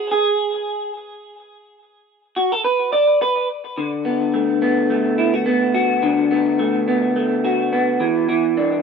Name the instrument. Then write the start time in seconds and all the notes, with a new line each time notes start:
clean electric guitar
Already playing: G#4
0.11 G#4
2.36 F#4
2.52 A4
2.64 B4
2.93 D5
3.22 B4
3.77 D3
4.05 B3
4.34 A3
4.62 B3
4.90 A3
5.18 E4
5.34 F#4
5.46 B3
5.74 F#4
6.03 D3
6.31 B3
6.59 A3
6.88 B3
7.16 A3
7.44 F#4
7.73 B3
8.00 E3
8.29 E3
8.57 D4